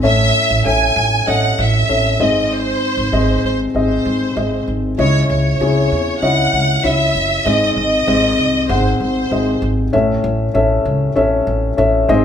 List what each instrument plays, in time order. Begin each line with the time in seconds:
0.03 upright bass A1, grand piano A2 C#4 A4 E5, violin section E5
0.50 upright bass A1
0.65 upright bass A1, grand piano C#4 A4 E5, violin section G#5
0.96 upright bass A1
1.27 upright bass A1, grand piano C#4 A4 D#5, violin section F#5
1.58 upright bass A1, violin section E5
1.89 upright bass A1, grand piano C#4 A4 E5
2.20 upright bass G#1, grand piano G#2 C4 G#4 D#5, violin section D#5
2.53 violin section C5
2.97 upright bass G#1
3.12 upright bass G#1, grand piano C4 G#4 D#5
3.44 upright bass G#1, violin section C5
3.75 upright bass G#1, grand piano C4 G#4 D#5, violin section C5
4.05 upright bass G#1
4.36 upright bass G#1, grand piano C4 G#4 D#5
4.68 upright bass G#1
4.98 upright bass C#2, grand piano C#3 C#4 E4 D#5, violin section C#5
5.30 upright bass C#2, violin section C#5
5.60 upright bass C#2, grand piano C#4 E4 G#4
5.92 upright bass E2
6.22 upright bass C#2, grand piano C#4 E4 D#5, violin section F#5
6.53 upright bass C#2
6.83 upright bass C#2, grand piano C#4 E4 E5, violin section E5
7.15 upright bass F#1
7.46 upright bass G#1, grand piano G#2 C4 G#4 D#5, violin section D#5
7.77 upright bass G#1, violin section D#5
8.07 upright bass G#1, grand piano C4 G#4 D#5
8.39 upright bass C2
8.69 upright bass G#1, grand piano C4 G#4 F#5, violin section C5
9.00 upright bass G#1, violin section C5
9.31 upright bass G#1, grand piano C4 G#4 D#5
9.62 upright bass G#1
9.93 upright bass A1, grand piano A2 C#4 A4 E5
10.24 upright bass A1
10.54 upright bass A1, grand piano C#4 A4 E5
10.85 upright bass C#2
11.16 upright bass A1, grand piano C#4 A4 E5
11.47 upright bass A1
11.77 upright bass A1, grand piano C#4 A4 E5
12.09 upright bass G#1, grand piano G#2 C4 G#4 D#5